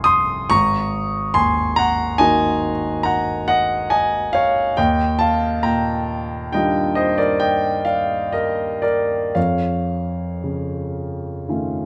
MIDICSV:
0, 0, Header, 1, 2, 480
1, 0, Start_track
1, 0, Tempo, 858369
1, 281, Time_signature, 5, 2, 24, 8
1, 2670, Tempo, 878477
1, 4110, Tempo, 927357
1, 4590, Tempo, 1048951
1, 6201, End_track
2, 0, Start_track
2, 0, Title_t, "Grand piano"
2, 0, Program_c, 0, 0
2, 0, Control_c, 0, 64, 127
2, 0, Note_on_c, 0, 29, 54
2, 0, Note_on_c, 0, 53, 44
2, 0, Note_on_c, 0, 56, 44
2, 0, Note_on_c, 0, 63, 43
2, 0, Note_on_c, 0, 68, 50
2, 0, Note_on_c, 0, 80, 70
2, 0, Note_on_c, 0, 84, 85
2, 0, Note_on_c, 0, 85, 73
2, 0, Note_on_c, 0, 89, 99
2, 22, Note_on_c, 0, 87, 101
2, 32, Note_off_c, 0, 84, 0
2, 32, Note_on_c, 0, 84, 79
2, 256, Note_off_c, 0, 29, 0
2, 259, Note_off_c, 0, 53, 0
2, 259, Note_off_c, 0, 56, 0
2, 261, Note_off_c, 0, 63, 0
2, 262, Note_off_c, 0, 68, 0
2, 264, Note_off_c, 0, 84, 0
2, 277, Note_off_c, 0, 85, 0
2, 277, Note_off_c, 0, 87, 0
2, 277, Note_on_c, 0, 85, 109
2, 282, Note_on_c, 0, 32, 60
2, 284, Note_on_c, 0, 82, 82
2, 290, Control_c, 0, 64, 0
2, 291, Note_off_c, 0, 89, 0
2, 292, Note_off_c, 0, 80, 0
2, 399, Control_c, 0, 64, 127
2, 738, Note_off_c, 0, 82, 0
2, 750, Note_on_c, 0, 84, 97
2, 753, Note_on_c, 0, 80, 70
2, 755, Note_on_c, 0, 39, 44
2, 757, Note_off_c, 0, 85, 0
2, 972, Note_off_c, 0, 80, 0
2, 986, Note_on_c, 0, 82, 102
2, 987, Note_off_c, 0, 84, 0
2, 999, Note_on_c, 0, 78, 74
2, 1215, Note_off_c, 0, 78, 0
2, 1221, Note_on_c, 0, 80, 96
2, 1224, Note_off_c, 0, 82, 0
2, 1226, Note_on_c, 0, 51, 50
2, 1227, Note_on_c, 0, 75, 69
2, 1228, Note_on_c, 0, 58, 46
2, 1231, Note_on_c, 0, 63, 46
2, 1235, Note_on_c, 0, 66, 46
2, 1512, Note_off_c, 0, 39, 0
2, 1685, Note_off_c, 0, 75, 0
2, 1696, Note_on_c, 0, 82, 87
2, 1704, Note_off_c, 0, 80, 0
2, 1707, Note_on_c, 0, 78, 66
2, 1933, Note_off_c, 0, 78, 0
2, 1944, Note_off_c, 0, 82, 0
2, 1944, Note_on_c, 0, 78, 93
2, 1951, Note_on_c, 0, 75, 63
2, 2174, Note_off_c, 0, 75, 0
2, 2182, Note_on_c, 0, 80, 87
2, 2187, Note_off_c, 0, 78, 0
2, 2189, Note_on_c, 0, 75, 71
2, 2411, Note_off_c, 0, 75, 0
2, 2421, Note_on_c, 0, 77, 92
2, 2424, Note_off_c, 0, 80, 0
2, 2430, Note_on_c, 0, 73, 73
2, 2646, Note_off_c, 0, 51, 0
2, 2647, Note_off_c, 0, 32, 0
2, 2647, Note_off_c, 0, 58, 0
2, 2648, Note_off_c, 0, 63, 0
2, 2650, Note_off_c, 0, 66, 0
2, 2654, Note_off_c, 0, 73, 0
2, 2666, Note_off_c, 0, 77, 0
2, 2667, Note_on_c, 0, 79, 81
2, 2669, Note_on_c, 0, 75, 63
2, 2673, Note_on_c, 0, 39, 65
2, 2678, Control_c, 0, 64, 0
2, 2778, Control_c, 0, 64, 127
2, 2890, Note_off_c, 0, 75, 0
2, 2895, Note_on_c, 0, 81, 84
2, 2906, Note_off_c, 0, 79, 0
2, 2907, Note_on_c, 0, 77, 69
2, 3128, Note_off_c, 0, 77, 0
2, 3137, Note_on_c, 0, 82, 83
2, 3139, Note_off_c, 0, 81, 0
2, 3140, Note_on_c, 0, 79, 66
2, 3141, Note_on_c, 0, 46, 44
2, 3607, Note_off_c, 0, 79, 0
2, 3626, Note_on_c, 0, 79, 79
2, 3627, Note_off_c, 0, 82, 0
2, 3631, Note_on_c, 0, 51, 40
2, 3634, Note_on_c, 0, 75, 60
2, 3636, Note_on_c, 0, 55, 44
2, 3640, Note_on_c, 0, 62, 41
2, 3641, Note_on_c, 0, 65, 47
2, 3852, Note_off_c, 0, 75, 0
2, 3861, Note_on_c, 0, 75, 78
2, 3867, Note_on_c, 0, 72, 65
2, 3868, Note_off_c, 0, 79, 0
2, 3916, Note_off_c, 0, 46, 0
2, 3979, Note_off_c, 0, 72, 0
2, 3983, Note_on_c, 0, 74, 76
2, 3984, Note_off_c, 0, 75, 0
2, 3989, Note_on_c, 0, 70, 59
2, 4100, Note_off_c, 0, 70, 0
2, 4103, Note_on_c, 0, 79, 79
2, 4106, Note_off_c, 0, 74, 0
2, 4107, Note_on_c, 0, 75, 59
2, 4325, Note_off_c, 0, 75, 0
2, 4336, Note_on_c, 0, 77, 77
2, 4340, Note_off_c, 0, 79, 0
2, 4342, Note_on_c, 0, 74, 57
2, 4572, Note_off_c, 0, 74, 0
2, 4583, Note_on_c, 0, 75, 72
2, 4586, Note_off_c, 0, 77, 0
2, 4589, Note_on_c, 0, 70, 58
2, 4802, Note_off_c, 0, 70, 0
2, 4810, Note_on_c, 0, 74, 69
2, 4815, Note_on_c, 0, 70, 54
2, 4816, Note_off_c, 0, 75, 0
2, 5040, Note_off_c, 0, 51, 0
2, 5040, Note_off_c, 0, 70, 0
2, 5042, Note_off_c, 0, 39, 0
2, 5042, Note_off_c, 0, 55, 0
2, 5044, Note_off_c, 0, 62, 0
2, 5044, Note_off_c, 0, 65, 0
2, 5053, Note_on_c, 0, 77, 67
2, 5055, Note_off_c, 0, 74, 0
2, 5055, Note_on_c, 0, 41, 50
2, 5056, Note_on_c, 0, 73, 53
2, 5067, Control_c, 0, 64, 0
2, 5149, Control_c, 0, 64, 127
2, 5551, Note_on_c, 0, 49, 35
2, 6030, Note_on_c, 0, 57, 32
2, 6031, Note_on_c, 0, 51, 34
2, 6034, Note_on_c, 0, 61, 35
2, 6034, Note_on_c, 0, 65, 38
2, 6201, Note_off_c, 0, 41, 0
2, 6201, Note_off_c, 0, 49, 0
2, 6201, Note_off_c, 0, 51, 0
2, 6201, Note_off_c, 0, 57, 0
2, 6201, Note_off_c, 0, 61, 0
2, 6201, Note_off_c, 0, 65, 0
2, 6201, Note_off_c, 0, 73, 0
2, 6201, Note_off_c, 0, 77, 0
2, 6201, End_track
0, 0, End_of_file